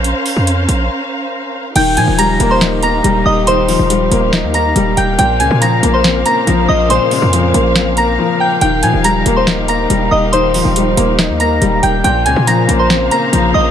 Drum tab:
CC |--------|x-------|--------|--------|
HH |xoxx----|xxxxxxx-|xoxxxxxx|xxxxxxx-|
SD |--------|----o---|----o---|----o---|

CC |--------|--------|--------|--------|
HH |xoxxxx--|xxxxxxx-|xoxxxxxx|xxxxxxx-|
SD |----o---|----o---|----o---|----o---|